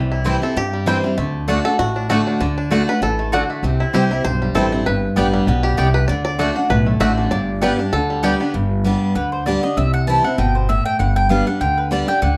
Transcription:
Already playing: C2 C3 E3 G3
0.12 E4
0.24 E3 G3 C4 E4 C5 G5
0.42 C4 E4 A4
0.56 G2 G4
0.73 G3
0.86 E3 G3 C4 E4 C5 G5
1.03 G3 C4 E4
1.18 D2 D3 A3
1.48 D3 A3 D4 F#4 D5 F#5
1.65 D4 F#4 A4
1.79 A1 A2 F#4
1.96 D4
2.09 D3 A3 D4 F#4 A4 D5 F#5
2.27 D4
2.40 D2 D3
2.58 D4
2.71 D3 A3 D4 F#4 D5 F#5
2.87 D4 F#4 B4
3.02 A1 E3 A4
3.19 A3
3.32 D3 A3 F#4 D5 F#5
3.50 A3
3.63 C2 C3 C4
3.80 E4
3.93 C2 E3 G3 C4 E4 G4 C5 G5
4.11 C4 E4
4.25 B1 G2 C5
4.42 G3
4.55 A1 E3 G3 C4 E4 A4 C5 G5
4.72 C4 E4
4.86 G1 G2 B4
5.16 A1 G3 B3 D4 G4 D5 G5
5.34 G3
5.47 B1 B2 B3
5.63 G4
5.77 C2 C3 B3 G4 D5 G5
5.94 B4
6.08 D2 D3 D5
6.25 D5
6.39 D3 A3 D4 F#4 D5 F#5
6.56 D4 F#4
6.70 B1 A2 B4
6.86 A3
7.00 A1 D3 A3 D4 F#4 D5 E5 F#5
7.18 D4
7.31 G1 G2 D5
7.61 G3 B3 D4 G4 B4 D5 G5
7.78 D4 G4
7.93 D2 D3 A4
8.10 G3
8.23 G3 B3 D4 G4 D5 G5
8.40 B3 D4 G4
8.54 G1 G2
8.84 G3 B3 D4 G4
9.15 D2 D3 B4
9.32 C5
9.46 G3 B3 D4 G4 D5
9.63 D4 G4 D#5
9.77 C2 C3 E5
9.94 F#5
10.07 E3 G3 C4 E4 A5
10.24 C4 E4 F#5
10.38 G1 B2 G5
10.55 C5
10.69 A2 E5
10.86 G5
10.99 G1 G2 F#5
11.16 G5
11.29 G3 B3 D4 G4 F5
11.47 D4 G4 F#5
11.61 D2 D3 G5
11.78 B4
11.91 G3 B3 D4 G4 D5
12.08 D4 G4 G5
12.22 D2 D3 F#5

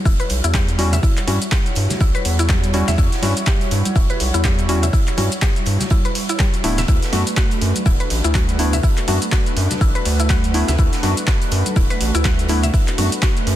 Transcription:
Already playing: G3 E4 F#4 C#5
0.05 E1 E4, kick, closed hi-hat, shaker
0.20 B4, closed hi-hat, shaker
0.29 B1, closed hi-hat, open hi-hat
0.44 E2 E4, closed hi-hat, shaker
0.54 G4, kick, snare, clap, closed hi-hat, high conga, shaker
0.69 closed hi-hat, shaker
0.79 G3 C#4 E4 F#4, closed hi-hat, open hi-hat
0.93 E5, closed hi-hat, low conga, shaker
1.03 E4, kick, closed hi-hat, shaker
1.17 clap, closed hi-hat, shaker
1.27 G2 G3 C#4 E4 F#4, closed hi-hat, open hi-hat, high conga
1.42 closed hi-hat, shaker
1.52 G4, kick, snare, clap, closed hi-hat, shaker
1.66 closed hi-hat, shaker
1.75 G2, closed hi-hat, open hi-hat
1.90 snare, closed hi-hat, high conga, low conga, shaker
2.00 B1 E4, kick, closed hi-hat, shaker
2.15 B4, closed hi-hat, shaker
2.25 E2, closed hi-hat, open hi-hat
2.39 E4, closed hi-hat, shaker
2.49 G4, kick, snare, clap, closed hi-hat, high conga, shaker
2.64 closed hi-hat, shaker
2.73 G3 C#4 E4 F#4, closed hi-hat, open hi-hat
2.88 E2 E5, snare, closed hi-hat, low conga, shaker
2.98 E2 E4, kick, closed hi-hat, shaker
3.12 snare, closed hi-hat, shaker
3.22 G2 G3 C#4 E4 F#4, snare, closed hi-hat, open hi-hat, high conga
3.37 closed hi-hat, shaker
3.46 G4, kick, snare, clap, closed hi-hat, shaker
3.61 closed hi-hat, shaker
3.71 G2, closed hi-hat, open hi-hat
3.85 closed hi-hat, high conga, shaker
3.96 E1 E4, kick, closed hi-hat, shaker
4.10 B4, closed hi-hat, shaker
4.20 B1, closed hi-hat, open hi-hat
4.34 E2 E4, closed hi-hat, shaker
4.44 G4, kick, snare, clap, closed hi-hat, high conga, shaker
4.59 closed hi-hat, shaker
4.69 G3 C#4 E4 F#4, closed hi-hat, open hi-hat
4.83 E5, closed hi-hat, low conga, shaker
4.93 E4, kick, closed hi-hat, shaker
5.07 clap, closed hi-hat, shaker
5.17 G2 G3 C#4 E4 F#4, closed hi-hat, open hi-hat, high conga
5.32 closed hi-hat, shaker
5.41 G4, kick, snare, clap, closed hi-hat, shaker
5.56 closed hi-hat, shaker
5.66 G2, closed hi-hat, open hi-hat
5.80 snare, closed hi-hat, high conga, low conga, shaker
5.90 E4, kick, closed hi-hat, shaker
6.05 B4, closed hi-hat, shaker
6.15 closed hi-hat, open hi-hat
6.29 E4, closed hi-hat, shaker
6.39 G4, kick, snare, clap, closed hi-hat, high conga, shaker
6.54 closed hi-hat, shaker
6.64 D1 A3 B3 D4 E4 F#4 B4, closed hi-hat, open hi-hat
6.78 E5, snare, closed hi-hat, low conga, shaker
6.88 D2 E4, kick, closed hi-hat, shaker
7.03 snare, closed hi-hat, shaker
7.12 F#2 A3 B3 D4 F#4, snare, closed hi-hat, open hi-hat, high conga
7.27 closed hi-hat, shaker
7.36 F#4, kick, snare, clap, closed hi-hat, shaker
7.51 closed hi-hat, shaker
7.62 F#2, closed hi-hat, open hi-hat
7.75 closed hi-hat, high conga, shaker
7.86 D1 E4, kick, closed hi-hat, shaker
8.00 B4, closed hi-hat, shaker
8.10 A1, closed hi-hat, open hi-hat
8.24 D2 E4, closed hi-hat, shaker
8.35 F#4, kick, snare, clap, closed hi-hat, high conga, shaker
8.49 closed hi-hat, shaker
8.59 A3 B3 D4 E4, closed hi-hat, open hi-hat
8.73 E5, closed hi-hat, low conga, shaker
8.83 E4, kick, closed hi-hat, shaker
8.97 clap, closed hi-hat, shaker
9.08 F#2 A3 B3 D4 F#4, closed hi-hat, open hi-hat, high conga
9.22 closed hi-hat, shaker
9.32 F#4, kick, snare, clap, closed hi-hat, shaker
9.46 closed hi-hat, shaker
9.57 F#2, closed hi-hat, open hi-hat
9.70 snare, closed hi-hat, high conga, low conga, shaker
9.81 A1 E4, kick, closed hi-hat, shaker
9.95 B4, closed hi-hat, shaker
10.05 D2, closed hi-hat, open hi-hat
10.20 E4, closed hi-hat, shaker
10.30 F#4, kick, snare, clap, closed hi-hat, high conga, shaker
10.44 closed hi-hat, shaker
10.54 A3 B3 D4 E4, closed hi-hat, open hi-hat
10.68 D2 E5, snare, closed hi-hat, low conga, shaker
10.78 D2 E4, kick, closed hi-hat, shaker
10.92 snare, closed hi-hat, shaker
11.03 F#2 A3 B3 D4 F#4, snare, closed hi-hat, open hi-hat, high conga
11.17 closed hi-hat, shaker
11.27 F#4, kick, snare, clap, closed hi-hat, shaker
11.42 closed hi-hat, shaker
11.51 F#2, closed hi-hat, open hi-hat
11.66 closed hi-hat, high conga, shaker
11.76 D1 E4, kick, closed hi-hat, shaker
11.90 B4, closed hi-hat, shaker
12.01 A1, closed hi-hat, open hi-hat
12.15 D2 E4, closed hi-hat, shaker
12.24 F#4, kick, snare, clap, closed hi-hat, high conga, shaker
12.39 closed hi-hat, shaker
12.48 A3 B3 D4 E4, closed hi-hat, open hi-hat
12.63 E5, closed hi-hat, low conga, shaker
12.74 E4, kick, closed hi-hat, shaker
12.88 clap, closed hi-hat, shaker
12.98 F#2 A3 B3 D4 F#4, closed hi-hat, open hi-hat, high conga
13.12 closed hi-hat, shaker
13.22 F#4, kick, snare, clap, closed hi-hat, shaker
13.37 closed hi-hat, shaker
13.47 F#2, closed hi-hat, open hi-hat

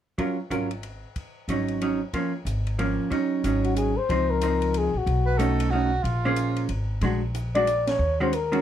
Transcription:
0.18 F#3 C#4 F4 A#4, kick, ride
0.50 G#1 F#3 C#4 F4 A#4, hi-hat pedal, ride
0.71 ride
0.83 ride
1.16 kick, ride
1.48 G#1 F#3 C#4 D#4, hi-hat pedal, ride
1.68 ride
1.81 F#3 C#4 D#4, ride
2.13 F3 A#3 C#4, kick, ride
2.45 G#1, hi-hat pedal, ride
2.67 ride
2.79 F3 A#3 C#4, ride
3.10 F#3 C#4 D#4, kick, ride
3.44 G#1 F#3 C#4 D#4, hi-hat pedal, ride
3.64 F#4, ride
3.77 G#4, hi-hat pedal, ride
3.97 C5
4.09 C#2 F3 C4 D#4, kick, ride
4.30 A#4
4.41 F3 C4 D#4, hi-hat pedal, ride
4.62 ride
4.74 G#4, ride
4.94 A#1 F#4
5.06 B1, kick, ride
5.26 B4
5.38 A3 C#4 D#4 A4, hi-hat pedal, ride
5.60 ride
5.70 A3 C#4 D#4 F#4
6.03 A#1 F4, kick, ride
6.25 A#3 C#4 G#4 C5
6.36 hi-hat pedal, ride
6.57 ride
6.69 G#1, ride
7.01 A#1 G#3 D4 F#4, kick, ride
7.35 hi-hat pedal, ride
7.55 G#3 D4 F#4 D5, ride
7.67 hi-hat pedal, ride
7.87 C#5, snare, ride
7.99 D#2
8.20 D#3 G#3 C#4 F#4 C5
8.33 A#4, hi-hat pedal, ride
8.52 D#3 G#3 C#4 F#4, ride

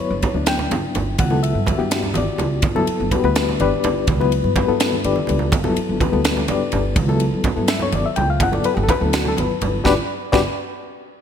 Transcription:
Already playing: F#3 B3 E4 B4
0.00 C#5
0.10 G1
0.22 kick, ride, low conga
0.34 D2 F#3 B3 D4 E4
0.46 G5, snare, ride
0.59 low conga
0.71 G1, ride, high conga, low conga
0.85 low conga
0.95 G1, ride, low conga
1.18 C#2 F#5, kick, ride, high conga
1.30 F#3 B3 E4 A4, low conga
1.43 E5, ride
1.55 G2
1.66 kick, ride, high conga, low conga
1.78 G2 B3 E4 F#4 G4
1.91 snare, ride
2.03 low conga
2.14 G1 D5, ride, high conga, low conga
2.28 low conga
2.38 C#2, ride, low conga
2.62 G1, kick, ride, high conga
2.75 F#3 B3 E4 A4, low conga
2.87 muted upright bass stroke, ride
3.00 G1
3.11 B3 F#4 G4 B4, kick, ride, low conga
3.24 D2 G3 B3 E4 B4
3.35 snare, ride
3.48 low conga
3.60 G1 D4 G4 B4 D5, ride, high conga, low conga
3.84 G1, ride, low conga
4.07 C#2, kick, ride, high conga
4.20 F#3 B3 E4 B4, low conga
4.32 ride, low conga
4.44 G2, low conga
4.56 B3 F#4 G4 B4, kick, ride, high conga, low conga
4.67 G2 G3 B3 E4 A4
4.80 snare, ride
4.92 high conga
5.04 G1 D4 G4 B4 D5, ride, high conga
5.16 high conga
5.27 C#2, ride, low conga
5.39 low conga
5.52 G1, kick, ride, high conga
5.64 F#3 B3 E4 A4, low conga
5.76 muted upright bass stroke, ride
5.89 G1
6.01 B3 F#4 G4 B4, kick, ride, high conga, low conga
6.12 D2 G3 B3 E4 A4
6.24 snare, ride
6.37 low conga
6.48 G1 D4 G4 B4 D5, ride, high conga, low conga
6.72 G1, ride, low conga
6.96 C#2, kick, ride, high conga
7.08 F#3 B3 E4 A4, low conga
7.20 ride
7.33 G2
7.44 kick, ride, high conga, low conga
7.56 G2 F#3 B3 E4 A4
7.68 E5, snare, ride
7.79 C#5, low conga
7.92 G1 D5, ride, high conga, low conga
8.05 E5, low conga
8.16 C#2 G5, ride, low conga
8.30 F5
8.40 G1 F#5, kick, ride, high conga
8.51 F#3 B3 E4 A4 D5, low conga
8.64 B4, muted upright bass stroke, ride
8.74 G1 G4
8.83 A4
8.89 B4, kick, ride, high conga, low conga
9.00 D2 F#3 B3 E4 A4
9.05 D4
9.13 F#4, snare, ride
9.25 A4, low conga
9.37 G1 B4, ride, high conga, low conga
9.49 low conga
9.61 G1, ride, low conga
9.84 G1 D4 F#4 G4 B4 D5, kick, snare, low conga
10.32 G1 D4 F#4 G4 B4 D5, kick, snare, low conga

